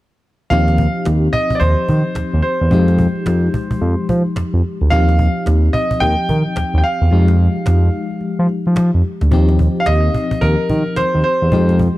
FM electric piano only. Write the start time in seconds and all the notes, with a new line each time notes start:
0.50 F3 C4 D#4 G4
2.70 F3 G#3 D#4 G4
4.91 F3 C4 D#4 G4
7.11 F3 G#3 D#4 G4
9.31 F3 C4 D#4 G4
11.52 F3 G#3 D#4 G4